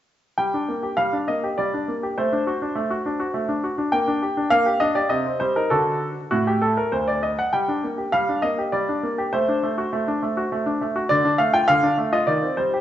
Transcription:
0.38 0.53 G3 soft
0.38 0.94 G5 medium
0.54 0.69 D4 soft
0.69 0.84 A#3 soft
0.83 0.99 G4 soft
0.97 1.12 G3 soft
0.97 1.15 F5 medium
1.13 1.29 D4 soft
1.28 1.44 A#3 soft
1.28 1.46 D#5 medium
1.44 1.59 G4 soft
1.58 1.73 G3 soft
1.58 1.94 D5 soft
1.74 1.89 D4 soft
1.88 2.04 A#3 soft
2.03 2.18 G4 soft
2.18 2.32 A3 soft
2.18 3.60 C5 medium
2.32 2.48 D4 soft
2.47 2.63 F#4 soft
2.62 2.77 D4 soft
2.75 2.90 A3 soft
2.90 3.06 F#4 soft
3.06 3.21 D4 soft
3.20 3.36 F#4 soft
3.34 3.49 A3 soft
3.48 3.64 D4 soft
3.64 3.79 F#4 soft
3.78 3.93 D4 soft
3.92 4.07 A#3 medium
3.92 4.47 G5 medium
4.08 4.23 D4 soft
4.22 4.38 G4 soft
4.37 4.52 D4 soft
4.50 4.66 A#3 medium
4.50 4.80 F5 medium
4.66 4.82 G4 soft
4.80 4.97 D4 soft
4.80 4.95 D#5 medium
4.95 5.10 G4 soft
4.95 5.10 D5 medium
5.09 5.25 C3 soft
5.09 5.37 D#5 medium
5.26 5.41 C4 soft
5.40 5.56 G3 soft
5.40 5.55 C5 medium
5.56 5.71 D#4 soft
5.56 5.71 A#4 medium
5.70 6.13 D3 soft
5.70 6.20 D4 soft
5.70 6.20 F#4 soft
5.70 6.07 A4 medium
6.31 6.74 A2 medium
6.31 6.46 F#4 medium
6.47 6.62 G4 medium
6.62 6.77 A4 medium
6.77 6.92 A#4 medium
6.92 7.35 D2 soft
6.92 7.07 C5 medium
7.08 7.23 D5 medium
7.23 7.38 D#5 medium
7.39 7.54 F#5 medium
7.53 7.68 G3 soft
7.53 7.89 G5 medium
7.68 7.84 D4 soft
7.84 7.99 A#3 soft
7.98 8.14 G4 soft
8.12 8.28 G3 soft
8.12 8.43 F5 medium
8.29 8.44 D4 soft
8.42 8.59 A#3 soft
8.42 8.61 D#5 medium
8.58 8.74 G4 soft
8.72 8.88 G3 soft
8.72 9.29 D5 medium
8.89 9.04 D4 soft
9.03 9.19 A#3 soft
9.18 9.33 G4 soft
9.33 9.48 A3 soft
9.33 10.81 C5 medium
9.48 9.64 D4 soft
9.63 9.79 A3 soft
9.78 9.94 F#4 soft
9.93 10.07 A3 soft
10.08 10.23 D4 soft
10.23 10.38 A3 soft
10.37 10.53 F#4 soft
10.52 10.66 A3 soft
10.66 10.82 D4 soft
10.81 10.97 A3 soft
10.96 11.10 F#4 soft
11.09 11.25 D3 medium
11.09 11.36 D5 medium
11.25 11.40 D4 soft
11.38 11.55 A3 soft
11.38 11.54 F5 medium
11.54 11.69 F4 soft
11.54 11.69 G5 medium
11.68 11.83 D3 medium
11.68 11.95 F5 medium
11.83 11.99 D4 soft
11.98 12.14 A3 soft
12.13 12.28 F4 soft
12.13 12.28 D#5 medium
12.27 12.43 D#3 soft
12.27 12.59 D5 medium
12.43 12.60 C4 soft
12.57 12.75 G3 soft
12.57 12.77 C5 medium
12.74 12.81 G4 soft

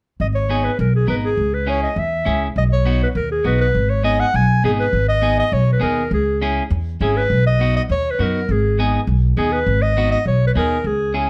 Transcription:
0.20 0.67 G#1 medium
0.20 0.27 D#5 medium
0.35 0.66 C#5 medium
0.50 0.70 B3 medium
0.50 0.70 D#4 soft
0.50 0.70 G#4 medium
0.64 0.79 B4 medium
0.79 1.02 B1 medium
0.79 0.93 A#4 medium
0.96 1.08 G#4 medium
1.07 1.32 G#1 medium
1.07 1.29 B3 medium
1.07 1.29 D#4 soft
1.07 1.29 A#4 medium
1.07 1.16 B4 medium
1.25 1.55 G#4 medium
1.37 1.85 C#2 medium
1.54 1.71 B4 medium
1.66 1.88 C#4 medium
1.66 1.88 E4 medium
1.66 1.88 G#4 medium
1.66 1.82 C#5 medium
1.83 2.00 D#5 medium
1.96 2.20 E2 medium
1.96 2.42 E5 medium
2.25 2.50 C#2 medium
2.25 2.47 C#4 medium
2.25 2.47 E4 medium
2.25 2.47 G#4 medium
2.56 3.03 B1 medium
2.56 2.64 D#5 medium
2.72 2.99 C#5 medium
2.85 3.07 B3 medium
2.85 3.07 D#4 medium
2.85 3.07 F#4 medium
3.03 3.09 B4 medium
3.15 3.39 D#2 medium
3.15 3.30 A#4 medium
3.31 3.45 G#4 medium
3.44 3.69 B1 medium
3.44 3.66 B3 medium
3.44 3.66 D#4 medium
3.44 3.66 F#4 medium
3.44 3.60 B4 medium
3.61 3.91 B4 medium
3.74 4.22 G#1 medium
3.90 4.04 C#5 medium
4.03 4.25 B3 medium
4.03 4.25 D#4 medium
4.03 4.25 G#4 medium
4.03 4.21 D#5 medium
4.20 4.37 F#5 loud
4.34 4.58 B1 loud
4.34 4.64 G#5 medium
4.64 4.87 G#1 medium
4.64 4.85 B3 medium
4.64 4.85 D#4 medium
4.64 4.71 G#4 medium
4.64 4.85 G#4 medium
4.80 5.07 B4 medium
4.93 5.40 G#1 medium
5.09 5.36 D#5 medium
5.22 5.43 B3 medium
5.22 5.43 D#4 medium
5.22 5.44 G#4 medium
5.39 5.54 D#5 medium
5.52 5.76 B1 medium
5.52 5.72 C#5 medium
5.73 5.82 B4 medium
5.80 6.06 D#2 medium
5.80 6.02 B3 medium
5.80 6.02 D#4 medium
5.80 6.02 G#4 medium
5.80 6.10 A#4 medium
6.11 6.59 C#2 medium
6.11 6.40 G#4 medium
6.42 6.62 C#4 medium
6.42 6.62 E4 medium
6.42 6.63 G#4 medium
6.70 6.94 E2 medium
7.00 7.24 G#1 medium
7.00 7.22 C#4 medium
7.00 7.22 E4 medium
7.00 7.22 G#4 medium
7.00 7.18 G#4 medium
7.17 7.46 B4 medium
7.30 7.77 B1 medium
7.47 7.74 D#5 loud
7.60 7.81 B3 medium
7.60 7.81 D#4 medium
7.60 7.81 F#4 medium
7.76 7.83 D#5 medium
7.89 8.13 D#2 medium
7.89 8.12 C#5 medium
8.11 8.23 B4 medium
8.19 8.43 F#2 medium
8.19 8.40 B3 medium
8.19 8.40 D#4 medium
8.19 8.40 F#4 medium
8.19 8.53 A#4 medium
8.49 8.96 G#1 medium
8.49 8.80 G#4 medium
8.79 8.99 B3 medium
8.79 9.00 D#4 medium
8.79 9.00 G#4 medium
9.07 9.31 B1 medium
9.37 9.61 D#2 medium
9.37 9.58 B3 medium
9.37 9.58 D#4 medium
9.37 9.54 G#4 medium
9.37 9.59 G#4 medium
9.52 9.83 B4 medium
9.66 10.14 G#1 medium
9.82 10.11 D#5 loud
9.97 10.18 B3 medium
9.97 10.18 D#4 medium
9.97 10.18 F#4 medium
10.11 10.25 D#5 medium
10.26 10.50 B1 medium
10.26 10.45 C#5 medium
10.47 10.51 B4 medium
10.55 10.80 D#2 medium
10.55 10.77 B3 medium
10.55 10.77 D#4 medium
10.55 10.77 G#4 medium
10.55 10.88 A#4 medium
10.84 11.30 C#2 medium
10.84 11.16 G#4 medium
11.14 11.30 C#4 medium
11.14 11.30 E4 medium
11.14 11.30 G#4 medium

